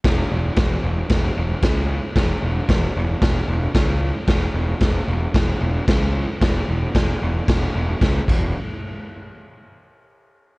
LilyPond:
<<
  \new Staff \with { instrumentName = "Picked electric bass" } { \clef bass \time 4/4 \key cis \minor \tempo 4 = 113 e,,8 e,,8 e,,8 e,,8 e,,8 e,,8 cis,4 | e,,8 e,,8 e,,8 e,,8 e,,8 e,,8 cis,4 | e,,8 e,,8 e,,8 e,,8 e,,8 e,,8 cis,4 | e,,8 e,,8 e,,8 e,,8 e,,8 e,,8 cis,8 e,,8 |
r1 | }
  \new DrumStaff \with { instrumentName = "Drums" } \drummode { \time 4/4 <cymc bd sn>4 <cymc bd sn>4 <cymc bd sn>4 <cymc bd sn>4 | <cymc bd sn>4 <cymc bd sn>4 <cymc bd sn>4 <cymc bd sn>4 | <cymc bd sn>4 <cymc bd sn>4 <cymc bd sn>4 <cymc bd sn>4 | <cymc bd sn>4 <cymc bd sn>4 <cymc bd sn>4 <cymc bd sn>8 <cymc bd>8 |
r4 r4 r4 r4 | }
>>